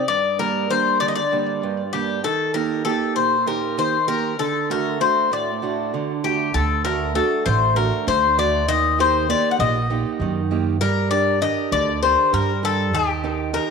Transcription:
0.08 0.69 G2 medium
0.08 0.37 D5 medium
0.39 0.69 G3 soft
0.39 0.69 A#3 soft
0.39 0.69 D4 soft
0.39 0.71 A#4 medium
0.70 1.19 G3 soft
0.70 1.20 A#3 soft
0.70 1.20 D4 soft
0.70 0.99 C5 medium
1.00 1.61 D3 medium
1.00 1.08 D5 medium
1.08 1.15 D#5 medium
1.15 1.92 D5 medium
1.32 1.82 G3 soft
1.32 1.82 A#3 soft
1.32 1.82 D4 medium
1.63 2.23 G2 medium
1.93 2.18 G3 soft
1.93 2.19 A#3 soft
1.93 2.19 D4 soft
1.93 2.22 G4 medium
2.24 2.84 D#3 medium
2.24 2.54 A4 medium
2.54 2.84 A#3 soft
2.54 2.85 D#4 soft
2.54 2.85 G4 soft
2.54 2.83 A#4 medium
2.85 3.35 A#3 soft
2.85 3.35 D#4 soft
2.85 3.35 G4 medium
2.85 3.14 A4 medium
3.16 3.76 A#2 medium
3.16 3.47 C5 medium
3.46 3.96 A#3 soft
3.46 3.96 D#4 soft
3.46 3.97 G4 medium
3.46 3.76 A#4 medium
3.78 4.37 D#3 medium
3.78 4.07 C5 medium
4.07 4.33 A#3 soft
4.07 4.33 D#4 soft
4.07 4.33 G4 soft
4.07 4.39 A#4 medium
4.39 4.99 D3 medium
4.39 4.68 A4 medium
4.70 4.99 A3 soft
4.70 5.00 D4 soft
4.70 5.00 F#4 soft
4.70 4.99 A#4 medium
5.00 5.50 A3 soft
5.00 5.50 D4 soft
5.00 5.50 F#4 soft
5.00 5.30 C5 medium
5.31 5.91 A2 medium
5.31 6.20 D5 medium
5.62 6.11 A3 soft
5.62 6.11 D4 soft
5.62 6.12 F#4 medium
5.94 6.53 D3 medium
6.24 6.48 A3 soft
6.24 6.49 D4 soft
6.24 6.49 F#4 soft
6.24 6.52 G4 medium
6.54 7.18 D2 medium
6.54 7.14 D3 medium
6.54 6.84 A4 medium
6.85 7.14 A3 soft
6.85 7.14 D4 soft
6.85 7.15 F#4 soft
6.85 7.13 A#4 medium
7.15 7.45 A3 soft
7.15 7.64 D4 soft
7.15 7.65 F#4 medium
7.15 7.44 A4 medium
7.46 7.89 A1 medium
7.46 7.75 A3 medium
7.46 7.74 C5 medium
7.76 8.25 A3 soft
7.76 8.25 D4 soft
7.76 8.26 F#4 medium
7.76 8.05 A#4 medium
8.07 8.68 D2 medium
8.07 8.66 D3 medium
8.07 8.36 C5 medium
8.37 8.62 A3 soft
8.37 8.62 D4 soft
8.37 8.62 F#4 soft
8.37 8.67 D5 medium
8.68 9.32 D#2 medium
8.68 9.27 D#3 medium
8.68 9.00 D#5 loud
8.98 9.28 A#3 soft
8.98 9.28 D#4 soft
8.98 9.29 G4 soft
8.98 9.29 C5 medium
9.29 9.58 A#3 soft
9.29 9.78 D#4 soft
9.29 9.78 G4 medium
9.29 9.51 D5 medium
9.51 9.59 F#5 medium
9.59 10.02 A#1 medium
9.59 9.89 A#3 medium
9.59 10.47 D#5 medium
9.90 10.39 A#3 soft
9.90 10.39 D#4 soft
9.90 10.39 G4 medium
10.20 10.81 F#2 medium
10.20 10.80 D#3 medium
10.51 10.75 A#3 soft
10.51 10.75 D#4 soft
10.51 10.76 G4 soft
10.81 11.45 G2 medium
10.81 11.40 G3 medium
10.81 11.09 A#4 medium
11.11 11.40 D4 soft
11.11 11.41 G4 soft
11.11 11.41 A#4 soft
11.11 11.39 D5 medium
11.41 11.90 D4 soft
11.41 11.91 G4 soft
11.41 11.91 A#4 soft
11.41 11.70 D#5 medium
11.72 12.14 D2 medium
11.72 12.32 D3 medium
11.72 12.00 D5 medium
12.03 12.51 D4 soft
12.03 12.52 G4 soft
12.03 12.52 A#4 medium
12.03 12.31 C5 medium
12.33 12.94 G2 medium
12.33 12.92 G3 medium
12.33 12.61 A#4 medium
12.63 12.87 D4 soft
12.63 12.87 G4 soft
12.63 12.95 A4 medium
12.63 12.88 A#4 soft
12.93 13.57 D#2 medium
12.93 13.52 D#3 medium
12.93 13.50 G4 medium
13.24 13.52 D#4 soft
13.24 13.53 G4 soft
13.24 13.53 A#4 soft
13.53 13.70 D#4 soft
13.53 13.70 G4 soft
13.53 13.70 A#4 medium
13.53 13.70 A#4 soft

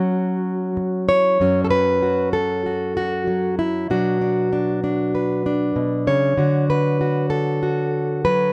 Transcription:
0.00 1.40 F#3 medium
0.00 1.37 C#4 soft
0.00 1.09 F#4 medium
0.77 muted steel-string acoustic guitar stroke medium
1.09 1.37 E4 soft
1.09 1.64 C#5 medium
1.40 3.90 F#2 medium
1.40 3.27 F#3 soft
1.40 3.87 C#4 soft
1.40 2.02 F#4 soft
1.65 1.70 A4 medium
1.71 2.33 B4 medium
2.02 2.66 F#4 soft
2.33 3.58 A4 medium
2.66 2.96 F#4 soft
2.97 3.58 F#4 medium
3.27 3.90 F#3 medium
3.59 3.90 E4 medium
3.90 5.75 B2 medium
3.90 8.24 F#3 soft
3.90 4.21 D4 soft
3.90 5.76 F#4 medium
4.21 4.52 D4 soft
4.53 4.83 D4 soft
4.84 5.45 D4 soft
5.15 6.07 B4 soft
5.46 6.35 D4 soft
5.76 6.07 B2 medium
6.07 6.37 C#3 medium
6.07 6.69 C#5 medium
6.37 8.53 D3 medium
6.37 7.00 F#4 soft
6.70 7.30 B4 medium
7.01 7.62 F#4 soft
7.30 8.24 A4 medium
7.63 8.53 F#4 soft
8.25 8.53 F#3 medium
8.25 8.53 B4 medium

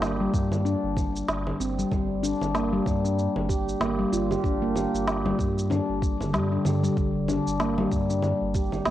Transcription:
0.00 0.28 G1 medium
0.00 snare loud
0.00 low conga medium
0.00 shaker soft
0.20 0.32 G3 medium
0.34 0.76 G2 loud
0.34 0.44 G3 medium
0.34 kick loud
0.34 shaker medium
0.52 low conga medium
0.52 shaker soft
0.65 0.76 D4 loud
0.65 shaker soft
0.83 1.22 G1 loud
0.97 kick loud
0.97 low conga medium
0.97 shaker medium
1.16 shaker soft
1.28 1.52 G1 loud
1.28 snare loud
1.28 shaker soft
1.47 low conga medium
1.60 1.84 G1 medium
1.60 1.77 C4 medium
1.60 shaker medium
1.78 1.90 G3 medium
1.78 shaker soft
1.91 2.33 G1 medium
1.91 2.22 G3 medium
1.91 kick loud
1.91 low conga medium
1.91 shaker soft
2.23 2.33 D4 medium
2.23 shaker medium
2.41 2.80 G1 medium
2.41 low conga medium
2.41 shaker soft
2.54 2.72 A#3 medium
2.54 snare medium
2.54 shaker soft
2.73 3.03 G3 loud
2.86 3.28 G2 loud
2.86 kick loud
2.86 low conga medium
2.86 shaker medium
3.04 3.48 D4 medium
3.04 shaker soft
3.19 shaker soft
3.36 3.75 G1 loud
3.36 low conga medium
3.49 3.60 G4 medium
3.49 kick loud
3.49 shaker medium
3.69 shaker soft
3.80 4.05 G1 loud
3.80 3.98 A#3 medium
3.80 snare loud
3.80 low conga medium
3.80 shaker soft
3.99 4.11 G3 medium
4.12 4.37 G1 medium
4.12 4.29 F4 medium
4.12 shaker medium
4.31 4.43 G4 medium
4.31 low conga medium
4.31 shaker soft
4.44 4.86 G1 medium
4.44 4.54 D4 medium
4.44 kick loud
4.44 shaker soft
4.62 4.75 A#3 medium
4.76 4.86 G4 medium
4.76 low conga medium
4.76 shaker medium
4.94 5.33 G1 medium
4.94 shaker soft
5.07 snare medium
5.07 shaker soft
5.25 5.37 G3 medium
5.25 low conga medium
5.38 5.81 G2 loud
5.38 5.49 G3 medium
5.38 kick loud
5.38 shaker medium
5.58 shaker soft
5.70 5.81 D4 medium
5.70 low conga medium
5.70 shaker soft
5.89 6.35 G1 medium
6.02 kick loud
6.02 shaker medium
6.20 6.28 D3 medium
6.20 low conga medium
6.20 shaker soft
6.33 6.58 G2 medium
6.33 6.50 G3 loud
6.33 snare loud
6.33 shaker soft
6.52 6.64 D4 medium
6.65 6.89 G2 medium
6.65 6.82 D3 medium
6.65 low conga medium
6.65 shaker medium
6.83 6.95 G3 loud
6.83 shaker soft
6.97 7.39 G1 medium
6.97 kick loud
6.97 shaker soft
7.28 7.39 D4 medium
7.28 low conga medium
7.28 shaker medium
7.47 7.86 G1 medium
7.47 shaker soft
7.60 7.77 A#3 medium
7.60 snare medium
7.60 shaker soft
7.78 8.08 G3 loud
7.78 low conga medium
7.92 8.33 G2 loud
7.92 kick medium
7.92 shaker medium
8.10 8.53 D4 medium
8.10 shaker soft
8.23 low conga medium
8.23 shaker soft
8.41 8.80 G1 loud
8.55 8.65 G4 medium
8.55 kick loud
8.55 shaker medium
8.72 low conga medium
8.72 shaker soft
8.86 8.90 G1 loud
8.86 8.90 A#3 medium
8.86 snare loud
8.86 shaker soft

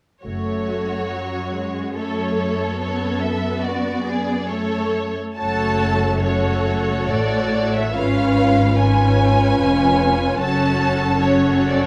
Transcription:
0.23 1.07 F#1 soft
0.23 5.14 F#2 soft
0.23 1.07 A3 soft
0.23 1.92 F#4 soft
0.23 1.92 C#5 soft
1.11 1.54 F#3 soft
1.54 1.97 G#3 soft
1.95 2.81 A3 soft
1.95 2.38 A4 soft
1.95 2.78 C#5 soft
2.39 3.60 A4 soft
2.81 4.45 B3 soft
2.81 3.21 C#5 soft
3.20 3.62 E5 soft
3.61 4.05 F#4 soft
3.61 4.47 D5 soft
4.06 4.49 G#4 soft
4.48 5.19 A3 soft
4.48 5.18 A4 soft
4.48 5.18 C#5 soft
5.36 7.08 F#1 soft
5.36 7.08 F#2 soft
5.36 6.21 A3 soft
5.36 6.21 F#4 soft
5.36 6.21 A4 soft
5.36 6.20 C#5 soft
5.36 6.19 A5 medium
6.24 7.92 A3 soft
6.24 7.92 F#4 soft
6.24 7.92 A4 soft
6.24 7.91 C#5 soft
6.24 7.12 C#5 soft
7.10 7.95 A1 soft
7.10 7.95 A2 soft
7.10 7.73 D5 medium
7.75 7.95 E5 soft
7.94 9.59 G#1 soft
7.94 9.60 G#2 soft
7.94 8.77 C#4 soft
7.94 8.77 F4 soft
7.94 8.77 B4 soft
7.94 8.77 C#5 soft
7.94 8.78 F5 medium
8.78 10.38 C#4 soft
8.78 10.38 F4 soft
8.78 10.38 B4 soft
8.78 10.38 C#5 soft
8.78 10.41 G#5 medium
9.60 10.40 F1 soft
9.60 10.40 F2 soft
10.40 11.87 F#1 soft
10.40 11.87 F#2 soft
10.40 11.22 C#4 soft
10.40 11.23 F#4 soft
10.40 11.21 A4 soft
10.40 11.21 C#5 soft
10.40 11.20 A5 medium
11.22 11.87 C#4 soft
11.22 11.87 F#4 soft
11.22 11.87 A4 soft
11.22 11.69 C#5 soft
11.22 11.87 C#5 soft
11.69 11.78 D5 soft
11.80 11.87 C#5 soft

